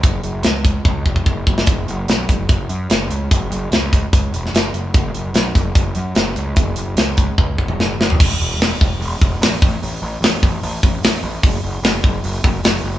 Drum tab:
CC |----------------|----------------|----------------|----------------|
HH |x-x-x-x---------|x-x-x-x-x-x-x-x-|x-x-x-x-x-x-x-x-|x-x-x-x-x-x-x-x-|
SD |----o----------o|----o-------o---|----o------oo---|----o-------o---|
T2 |----------------|----------------|----------------|----------------|
FT |----------------|----------------|----------------|----------------|
BD |o-----o-o-ooo-o-|o-----o-o-------|o-----o-o-------|o-----o-o-------|

CC |----------------|x---------------|----------------|----------------|
HH |x-x-x-x---------|----o---o---o---|o---o---o---o---|o---o---o---o---|
SD |----o-------o-o-|----o-------o---|----o-------o---|----o-------o---|
T2 |-----------o----|----------------|----------------|----------------|
FT |---------------o|----------------|----------------|----------------|
BD |o-----o-o-o-----|o-----o---o---o-|------o---o-----|o-----o---o-----|